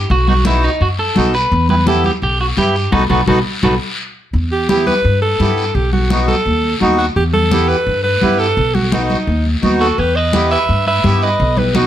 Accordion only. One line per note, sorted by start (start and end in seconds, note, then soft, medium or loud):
0.27 0.34 B3 medium
0.27 0.34 D#4 medium
0.27 0.34 F#4 medium
0.45 0.70 B3 medium
0.45 0.70 D#4 medium
0.45 0.70 F#4 medium
1.16 1.34 B3 medium
1.16 1.35 D#4 medium
1.16 1.35 F#4 medium
1.69 1.75 B3 medium
1.69 1.75 E4 medium
1.69 1.75 G4 medium
1.86 2.11 B3 medium
1.86 2.11 E4 medium
1.86 2.11 G4 medium
2.57 2.76 B3 medium
2.57 2.76 E4 medium
2.57 2.76 G4 medium
2.92 3.03 B3 medium
2.92 3.03 D#4 medium
2.92 3.04 F#4 medium
3.10 3.21 B3 medium
3.10 3.21 D#4 medium
3.10 3.21 F#4 medium
3.27 3.39 B3 loud
3.27 3.39 D#4 medium
3.27 3.39 F#4 medium
3.63 3.75 B3 medium
3.63 3.75 D#4 medium
3.63 3.75 F#4 medium
4.69 4.94 B3 medium
4.69 4.94 E4 medium
4.69 4.94 G4 medium
5.40 5.64 B3 medium
5.40 5.65 E4 medium
5.40 5.65 G4 medium
6.11 6.35 B3 medium
6.11 6.35 D#4 medium
6.11 6.36 F#4 medium
6.81 7.06 B3 medium
6.81 7.06 D#4 medium
6.81 7.06 F#4 medium
7.51 7.76 B3 medium
7.51 7.76 E4 medium
7.51 7.77 G4 medium
8.22 8.47 B3 medium
8.22 8.47 E4 medium
8.22 8.47 G4 medium
8.92 9.17 B3 medium
8.92 9.17 D#4 medium
8.92 9.18 F#4 medium
9.62 9.87 B3 medium
9.62 9.87 D#4 medium
9.62 9.88 F#4 medium
10.33 10.58 B3 medium
10.33 10.58 E4 medium
10.33 10.59 G4 medium
11.04 11.29 B3 medium
11.04 11.29 E4 medium
11.04 11.29 G4 medium
11.75 11.87 B3 medium
11.75 11.87 D#4 medium
11.75 11.87 F#4 medium